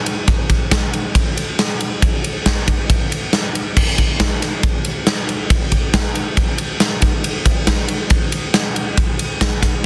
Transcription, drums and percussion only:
0.06 ride medium
0.28 kick loud
0.28 ride medium
0.50 kick medium
0.50 ride medium
0.71 kick medium
0.71 snare loud
0.71 ride medium
0.93 ride medium
1.15 kick loud
1.15 ride medium
1.37 ride medium
1.59 snare loud
1.59 ride loud
1.81 ride medium
2.02 kick loud
2.02 ride loud
2.24 ride medium
2.46 kick medium
2.46 snare loud
2.46 ride loud
2.68 kick medium
2.68 ride medium
2.90 kick loud
2.90 ride medium
3.12 ride medium
3.33 snare medium
3.33 ride medium
3.55 ride medium
3.77 kick loud
3.77 crash loud
3.98 kick medium
3.98 ride medium
4.20 kick medium
4.20 snare loud
4.20 ride loud
4.42 snare soft
4.42 ride medium
4.63 kick loud
4.63 ride medium
4.85 ride medium
5.07 snare loud
5.07 ride loud
5.29 ride medium
5.50 kick loud
5.50 ride loud
5.72 kick medium
5.72 ride medium
5.94 kick medium
5.94 snare loud
5.94 ride loud
6.15 ride medium
6.37 kick loud
6.37 ride loud
6.58 ride medium
6.80 snare loud
6.80 ride loud
7.02 kick medium
7.02 ride medium
7.24 ride loud
7.46 kick medium
7.46 ride medium
7.67 kick medium
7.67 snare loud
7.67 ride loud
7.88 ride medium
8.10 kick loud
8.10 ride medium
8.32 ride medium
8.54 snare loud
8.54 ride medium
8.76 ride medium
8.97 kick loud
8.97 ride loud
9.19 ride medium
9.41 kick medium
9.41 snare loud
9.41 ride medium
9.63 kick medium
9.63 snare soft
9.63 ride medium

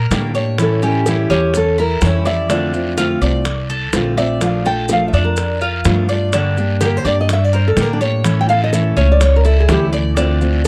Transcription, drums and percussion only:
0.11 high bongo medium
0.11 low bongo medium
0.11 short guiro medium
0.11 maracas medium
0.35 short guiro medium
0.35 maracas soft
0.58 high bongo medium
0.58 long guiro medium
0.58 maracas medium
0.82 high bongo soft
0.82 maracas soft
1.06 high bongo medium
1.06 short guiro medium
1.06 maracas medium
1.30 high bongo soft
1.30 short guiro medium
1.30 maracas soft
1.54 high bongo medium
1.54 long guiro medium
1.54 maracas medium
1.78 high bongo soft
1.78 maracas soft
2.01 high bongo medium
2.01 low bongo medium
2.01 short guiro medium
2.01 maracas medium
2.26 short guiro medium
2.26 maracas soft
2.50 high bongo medium
2.50 long guiro medium
2.50 maracas medium
2.74 maracas soft
2.98 high bongo medium
2.98 short guiro medium
2.98 maracas medium
3.22 short guiro medium
3.22 maracas soft
3.45 high bongo medium
3.45 long guiro medium
3.45 maracas medium
3.70 maracas soft
3.93 high bongo medium
3.93 low bongo medium
3.93 short guiro medium
3.93 maracas medium
4.18 short guiro medium
4.18 maracas soft
4.41 high bongo medium
4.41 long guiro medium
4.41 maracas medium
4.65 high bongo soft
4.65 maracas soft
4.89 high bongo medium
4.89 short guiro medium
4.89 maracas medium
5.13 high bongo soft
5.13 short guiro medium
5.13 maracas soft
5.37 high bongo medium
5.37 long guiro medium
5.37 maracas medium
5.61 high bongo soft
5.61 maracas soft
5.85 high bongo medium
5.85 low bongo medium
5.85 short guiro medium
5.85 maracas medium
6.08 short guiro medium
6.08 maracas soft
6.33 high bongo medium
6.33 long guiro medium
6.33 maracas medium
6.57 maracas soft
6.81 high bongo medium
6.81 short guiro medium
6.81 maracas medium
7.05 short guiro medium
7.05 maracas soft
7.29 high bongo medium
7.29 long guiro medium
7.29 maracas medium
7.53 maracas soft
7.77 high bongo medium
7.77 low bongo medium
7.77 short guiro medium
7.77 maracas medium
8.01 short guiro medium
8.01 maracas soft
8.25 high bongo medium
8.25 long guiro medium
8.25 maracas medium
8.49 high bongo soft
8.49 maracas soft
8.73 high bongo medium
8.73 short guiro medium
8.73 maracas medium
8.97 high bongo soft
8.97 short guiro medium
8.97 maracas soft
9.21 high bongo medium
9.21 long guiro medium
9.21 maracas medium
9.45 high bongo soft
9.45 maracas soft
9.69 high bongo medium
9.69 low bongo medium
9.69 short guiro medium
9.69 maracas medium
9.93 short guiro medium
9.93 maracas soft
10.17 high bongo medium
10.17 long guiro medium
10.17 maracas medium
10.41 maracas soft

